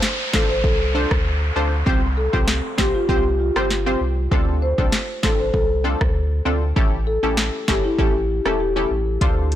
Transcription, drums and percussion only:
0.02 snare
0.33 kick, snare
0.64 kick
1.11 kick, cross-stick
1.87 kick
2.33 kick
2.48 snare
2.78 kick, snare
3.09 kick
3.56 cross-stick
3.70 snare
4.32 kick
4.78 kick
4.92 snare
5.23 kick, snare
5.54 kick
6.01 kick, cross-stick
6.76 kick
7.37 snare
7.68 kick, snare
7.99 kick
8.46 cross-stick
9.21 kick, closed hi-hat
9.52 closed hi-hat

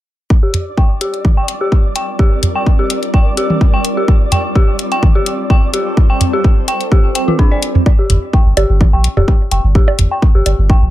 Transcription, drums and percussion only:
0.30 kick
0.54 closed hi-hat, mid tom
0.77 kick
1.01 closed hi-hat
1.14 closed hi-hat
1.25 kick, high tom
1.48 closed hi-hat
1.72 kick
1.96 closed hi-hat
2.19 kick
2.43 closed hi-hat, mid tom
2.66 kick
2.90 closed hi-hat
3.03 closed hi-hat
3.14 kick
3.37 closed hi-hat
3.50 high tom
3.61 kick
3.85 closed hi-hat
4.08 kick
4.32 closed hi-hat, mid tom
4.55 kick
4.79 closed hi-hat
4.92 closed hi-hat
5.03 kick, high tom
5.26 closed hi-hat
5.50 kick
5.74 closed hi-hat
5.97 kick
6.21 closed hi-hat, mid tom
6.44 kick
6.68 closed hi-hat
6.81 closed hi-hat
6.92 kick
7.15 closed hi-hat
7.28 high tom
7.39 kick
7.63 closed hi-hat
7.75 mid tom
7.86 kick, high bongo
8.10 closed hi-hat, mid tom
8.33 kick
8.57 closed hi-hat, high bongo
8.81 kick, high tom
9.04 closed hi-hat
9.17 mid tom, high bongo
9.28 kick
9.51 closed hi-hat
9.75 kick
9.88 high bongo
9.99 closed hi-hat, mid tom
10.22 kick
10.46 closed hi-hat, high bongo
10.70 kick

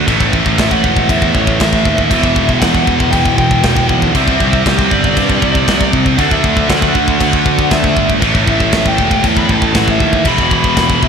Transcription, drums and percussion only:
0.08 kick, crash
0.20 kick
0.33 kick
0.46 kick
0.58 kick, snare, crash
0.71 kick
0.84 kick
0.97 kick
1.09 kick, crash
1.22 kick
1.35 kick
1.47 kick
1.60 kick, snare, crash
1.73 kick
1.85 kick
1.98 kick
2.11 kick, crash
2.23 kick
2.36 kick
2.49 kick
2.62 kick, snare, crash
2.75 kick
2.87 kick
3.00 kick
3.13 kick, crash
3.26 kick
3.38 kick
3.51 kick
3.64 kick, snare, crash
3.77 kick
3.89 kick
4.02 kick
4.15 kick, crash
4.28 kick
4.40 kick
4.53 kick
4.66 kick, snare, crash
4.79 kick
4.91 kick
5.04 kick
5.17 kick, crash
5.30 kick
5.42 kick
5.55 kick
5.68 kick, snare, crash
5.81 kick
5.93 kick
6.06 kick
6.19 kick, crash
6.31 kick
6.44 kick
6.57 kick
6.70 kick, snare, crash
6.82 kick
6.95 kick
7.08 kick
7.21 kick, crash
7.33 kick
7.46 kick
7.59 kick
7.71 kick, snare, crash
7.84 kick
7.97 kick
8.10 kick
8.22 kick, crash
8.35 kick
8.48 kick
8.60 kick
8.72 kick, snare, crash
8.86 kick
8.98 kick
9.11 kick
9.24 kick, crash
9.37 kick
9.49 kick
9.62 kick
9.75 kick, snare, crash
9.88 kick
10.00 kick
10.13 kick
10.25 kick, crash
10.38 kick
10.51 kick
10.64 kick
10.77 kick, snare, crash
10.90 kick
11.03 kick

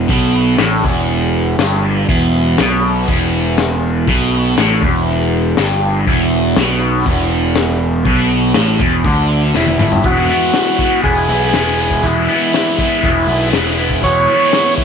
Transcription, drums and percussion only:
0.09 kick, open hi-hat
0.58 snare, open hi-hat
0.84 kick
1.09 open hi-hat
1.59 snare, open hi-hat
2.09 kick, open hi-hat
2.58 snare, open hi-hat
3.08 kick, open hi-hat
3.58 snare, open hi-hat
4.08 kick, open hi-hat
4.58 snare, open hi-hat
4.82 kick
5.07 open hi-hat
5.57 snare, open hi-hat
6.07 kick, open hi-hat
6.56 snare, open hi-hat
7.06 kick, open hi-hat
7.56 snare, open hi-hat
8.05 kick, open hi-hat
8.54 snare, open hi-hat
8.80 kick
9.05 kick, open hi-hat
9.54 snare
9.67 high tom
9.79 mid tom
9.92 floor tom
10.04 kick, closed hi-hat
10.29 closed hi-hat
10.54 snare, closed hi-hat
10.79 kick, closed hi-hat
11.04 kick, closed hi-hat
11.29 closed hi-hat
11.54 snare, closed hi-hat
11.79 closed hi-hat
11.91 kick
12.03 kick, closed hi-hat
12.29 closed hi-hat
12.54 snare, closed hi-hat
12.78 kick, closed hi-hat
13.03 kick, closed hi-hat
13.29 closed hi-hat
13.53 snare, closed hi-hat
13.79 closed hi-hat
13.90 kick
14.03 kick, closed hi-hat
14.28 closed hi-hat
14.53 snare, closed hi-hat
14.78 kick, closed hi-hat

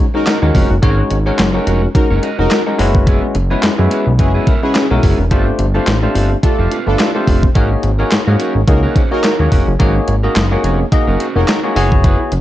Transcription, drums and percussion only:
0.27 snare, clap, closed hi-hat
0.55 kick, open hi-hat
0.83 kick, closed hi-hat
1.11 closed hi-hat
1.39 snare, clap, closed hi-hat
1.67 closed hi-hat
1.95 kick, closed hi-hat
2.23 closed hi-hat
2.51 snare, clap, closed hi-hat
2.79 open hi-hat
2.95 kick
3.07 kick, closed hi-hat
3.35 closed hi-hat
3.63 snare, clap, closed hi-hat
3.91 closed hi-hat
4.19 kick, closed hi-hat
4.47 kick, closed hi-hat
4.75 snare, clap, closed hi-hat
5.03 kick, open hi-hat
5.31 kick, closed hi-hat
5.59 closed hi-hat
5.87 snare, clap, closed hi-hat
6.15 open hi-hat
6.43 kick, closed hi-hat
6.72 closed hi-hat
6.99 snare, clap, closed hi-hat
7.27 kick, open hi-hat
7.43 kick
7.55 kick, closed hi-hat
7.83 closed hi-hat
8.11 snare, clap, closed hi-hat
8.40 closed hi-hat
8.68 kick, closed hi-hat
8.96 kick, closed hi-hat
9.24 snare, clap, closed hi-hat
9.52 kick, open hi-hat
9.80 kick, closed hi-hat
10.08 closed hi-hat
10.36 snare, clap, closed hi-hat
10.64 closed hi-hat
10.92 kick, closed hi-hat
11.20 closed hi-hat
11.48 snare, clap, closed hi-hat
11.76 open hi-hat
11.92 kick
12.04 kick, closed hi-hat
12.32 closed hi-hat

